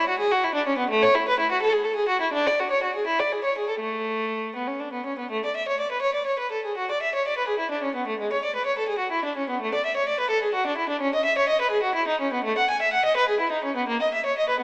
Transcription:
0.09 0.20 F#4 medium
0.19 0.31 G#4 medium
0.32 0.43 F#4 medium
0.44 0.55 E4 medium
0.55 0.66 D4 medium
0.67 0.78 C#4 medium
0.78 0.90 B3 medium
0.90 1.01 A3 medium
1.03 1.14 C#5 medium
1.15 1.26 E4 medium
1.28 1.38 B4 medium
1.40 1.50 E4 medium
1.51 1.61 F#4 medium
1.62 1.73 A4 medium
1.73 1.84 G#4 medium
1.84 1.96 A4 medium
1.96 2.08 G#4 medium
2.09 2.21 F#4 medium
2.21 2.33 E4 medium
2.33 2.46 D4 medium
2.47 2.59 D5 medium
2.60 2.71 F#4 medium
2.71 2.83 C#5 medium
2.83 2.95 F#4 medium
2.95 3.07 G#4 medium
3.07 3.19 E4 medium
3.20 3.32 D5 soft
3.32 3.44 G#4 soft
3.45 3.56 C#5 soft
3.58 3.69 G#4 soft
3.69 3.81 A4 soft
3.80 4.53 A3 medium
4.56 4.68 B3 soft
4.68 4.80 C#4 soft
4.80 4.93 D4 soft
4.93 5.05 B3 soft
5.06 5.18 C#4 soft
5.19 5.30 B3 soft
5.31 5.43 A3 medium
5.45 5.56 D5 soft
5.57 5.67 E5 soft
5.68 5.79 C#5 soft
5.80 5.91 D5 soft
5.92 6.03 B4 soft
6.02 6.14 C#5 medium
6.15 6.26 D5 soft
6.26 6.38 C#5 soft
6.39 6.51 B4 soft
6.52 6.64 A4 soft
6.65 6.77 G#4 soft
6.77 6.89 F#4 medium
6.91 7.02 D5 soft
7.03 7.14 E5 soft
7.15 7.26 C#5 medium
7.28 7.38 D5 soft
7.38 7.49 B4 soft
7.48 7.60 G#4 soft
7.59 7.71 E4 soft
7.71 7.83 D4 soft
7.83 7.95 C#4 soft
7.95 8.07 B3 soft
8.07 8.19 A3 soft
8.20 8.31 G#3 medium
8.32 8.43 C#5 soft
8.45 8.55 D5 soft
8.56 8.66 B4 medium
8.66 8.77 C#5 medium
8.78 8.89 A4 soft
8.88 9.00 G#4 medium
8.99 9.11 F#4 soft
9.12 9.24 E4 medium
9.25 9.37 D4 soft
9.37 9.49 C#4 medium
9.50 9.62 B3 soft
9.62 9.74 A3 medium
9.74 9.86 D5 medium
9.86 9.98 E5 medium
9.97 10.09 C#5 medium
10.09 10.20 D5 medium
10.20 10.32 B4 medium
10.31 10.43 A4 medium
10.43 10.55 G#4 medium
10.55 10.67 F#4 medium
10.67 10.79 D4 medium
10.78 10.90 E4 medium
10.89 11.01 D4 medium
11.01 11.13 C#4 medium
11.15 11.26 D#5 medium
11.25 11.37 E5 medium
11.38 11.49 C#5 medium
11.49 11.60 D#5 medium
11.61 11.72 B4 medium
11.71 11.83 G#4 medium
11.83 11.96 F#4 medium
11.95 12.08 E4 medium
12.08 12.20 D#4 medium
12.21 12.33 C#4 medium
12.33 12.45 B3 medium
12.44 12.57 A3 medium
12.58 12.69 F#5 medium
12.70 12.81 G#5 medium
12.82 12.93 E5 medium
12.93 13.05 F#5 medium
13.05 13.17 D#5 medium
13.17 13.28 B4 medium
13.29 13.40 G#4 medium
13.40 13.52 E4 medium
13.52 13.63 D#4 soft
13.64 13.76 C#4 medium
13.76 13.87 B3 soft
13.88 13.99 A#3 medium
14.02 14.12 D#5 medium
14.14 14.24 E5 medium
14.26 14.36 C#5 medium
14.39 14.49 D#5 medium
14.49 14.60 B4 medium
14.60 14.63 B3 medium

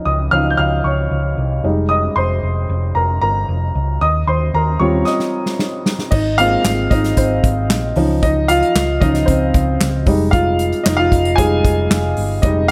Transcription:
0.00 0.32 F3 soft
0.00 0.32 C#4 soft
0.00 0.33 D#4 soft
0.05 0.28 C#2 medium
0.05 0.31 D#5 medium
0.05 0.33 D#6 medium
0.31 0.54 C#2 medium
0.31 0.56 F3 soft
0.31 0.56 C#4 soft
0.31 0.56 D#4 soft
0.31 0.51 F5 medium
0.31 0.52 F6 medium
0.50 0.58 G6 medium
0.57 0.80 C#2 medium
0.57 0.83 F5 medium
0.57 0.85 F6 medium
0.84 1.06 C#2 medium
0.84 1.61 C#5 medium
0.84 1.60 C#6 medium
1.11 1.33 C#2 medium
1.38 1.59 C2 medium
1.64 2.07 F1 medium
1.64 3.71 G3 soft
1.64 3.71 G#3 soft
1.64 3.71 D#4 soft
1.89 2.15 D#5 medium
1.89 2.17 D#6 medium
2.16 2.38 F1 medium
2.16 2.92 C5 medium
2.16 2.98 C6 medium
2.43 2.65 F1 medium
2.69 2.91 F1 medium
2.95 3.18 F1 medium
2.95 3.21 A#4 medium
2.95 3.20 A#5 medium
3.21 3.44 G1 medium
3.21 3.72 A#4 soft
3.21 3.71 A#5 medium
3.49 3.70 F1 medium
3.75 3.97 C#2 medium
4.01 4.23 D#2 medium
4.01 4.26 D#5 medium
4.01 4.29 D#6 medium
4.27 4.49 D#2 medium
4.27 4.53 C5 medium
4.27 4.52 C6 medium
4.54 4.76 D#2 medium
4.54 4.80 A#4 medium
4.54 4.81 A#5 medium
4.79 5.02 D#2 medium
4.79 5.15 G3 soft
4.79 5.15 C4 soft
4.79 5.16 F4 medium
4.79 5.05 C#5 medium
4.79 5.07 C#6 medium
5.05 5.82 D#5 medium
5.05 5.81 D#6 medium
5.05 snare soft
5.20 snare soft
5.46 snare medium
5.59 snare medium
5.86 snare medium
5.99 snare medium
6.11 6.55 G#1 loud
6.11 6.37 D#4 medium
6.11 6.39 D#5 medium
6.11 kick loud
6.11 crash medium
6.38 6.74 G#3 medium
6.38 6.74 A#3 soft
6.38 6.74 C4 medium
6.38 6.89 F4 medium
6.38 6.92 F5 loud
6.38 closed hi-hat medium
6.64 6.86 G#1 medium
6.64 snare loud
6.64 clap medium
6.64 closed hi-hat medium
6.90 7.13 G#1 medium
6.90 7.16 D#4 medium
6.90 7.18 D#5 medium
6.90 kick medium
6.90 closed hi-hat medium
7.04 snare soft
7.04 closed hi-hat medium
7.17 7.39 G#1 medium
7.17 7.67 C4 medium
7.17 7.66 C5 medium
7.17 kick medium
7.17 closed hi-hat medium
7.44 7.70 G#1 medium
7.44 kick medium
7.44 closed hi-hat medium
7.70 7.92 A#1 medium
7.70 snare loud
7.70 clap medium
7.70 closed hi-hat medium
7.96 8.61 C#2 loud
7.96 8.71 F3 medium
7.96 8.72 C#4 soft
7.96 8.22 D#4 medium
7.96 open hi-hat medium
8.23 8.48 D#4 medium
8.23 8.50 D#5 medium
8.23 kick loud
8.23 closed hi-hat medium
8.48 8.98 F4 medium
8.48 8.98 F5 loud
8.48 closed hi-hat medium
8.62 closed hi-hat soft
8.75 8.97 C#2 loud
8.75 snare loud
8.75 clap medium
8.75 closed hi-hat medium
9.00 9.23 C#2 medium
9.00 9.25 F3 soft
9.00 9.25 C#4 soft
9.00 9.26 D#4 medium
9.00 9.28 D#5 medium
9.00 kick medium
9.00 closed hi-hat medium
9.15 snare soft
9.15 closed hi-hat medium
9.26 9.50 C#2 medium
9.26 9.77 C4 medium
9.26 9.76 C5 medium
9.26 kick medium
9.26 closed hi-hat medium
9.54 9.76 C#2 medium
9.54 kick medium
9.54 closed hi-hat medium
9.81 10.09 C#2 medium
9.81 snare loud
9.81 clap medium
9.81 closed hi-hat medium
10.06 10.72 F1 medium
10.06 10.81 G3 medium
10.06 10.82 G#3 medium
10.06 10.82 D#4 medium
10.06 kick medium
10.06 open hi-hat medium
10.31 10.82 F4 medium
10.31 10.86 F5 medium
10.31 kick loud
10.31 closed hi-hat medium
10.59 closed hi-hat medium
10.72 closed hi-hat soft
10.84 11.08 F1 loud
10.84 10.98 D#4 medium
10.84 10.97 D#5 medium
10.84 snare loud
10.84 clap medium
10.84 closed hi-hat medium
10.97 11.36 F4 medium
10.97 11.38 F5 loud
11.12 11.34 F1 medium
11.12 kick medium
11.12 closed hi-hat medium
11.25 closed hi-hat medium
11.36 11.60 F1 loud
11.36 11.62 G3 medium
11.36 11.62 G#3 soft
11.36 11.62 D#4 medium
11.36 12.14 G#4 medium
11.36 12.12 G#5 loud
11.36 kick medium
11.36 closed hi-hat medium
11.65 11.86 F1 medium
11.65 kick loud
11.65 closed hi-hat medium
11.91 12.13 F1 loud
11.91 snare loud
11.91 clap medium
11.91 closed hi-hat medium
12.17 12.39 G1 medium
12.17 open hi-hat medium
12.42 12.71 F1 loud
12.42 12.71 G3 medium
12.42 12.71 G#3 soft
12.42 12.69 D#4 medium
12.42 12.70 D#5 medium
12.42 kick loud
12.42 closed hi-hat medium

